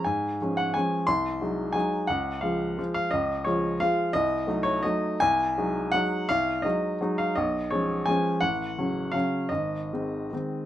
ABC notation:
X:1
M:3/4
L:1/8
Q:1/4=171
K:Db
V:1 name="Grand piano"
a3 g a2 | c'4 a2 | g2 f3 f | e2 d2 f2 |
e3 d e2 | a4 g2 | f2 e3 f | e2 d2 a2 |
g4 f2 | e6 |]
V:2 name="Grand piano" clef=bass
A,,2 [F,A,D]2 [F,A,D]2 | C,,2 [G,A,E]2 [G,A,E]2 | D,,2 [F,A,F]2 [F,A,F]2 | D,,2 [F,A,F]2 [F,A,F]2 |
C,,2 [G,=A,E]2 [G,A,E]2 | C,,2 [G,A,E]2 [G,A,E]2 | C,,2 [G,A,E]2 [G,A,E]2 | _C,,2 [F,A,D]2 [F,A,D]2 |
=A,,,2 [D,G,D]2 [D,G,D]2 | A,,,2 [E,A,C]2 [E,A,C]2 |]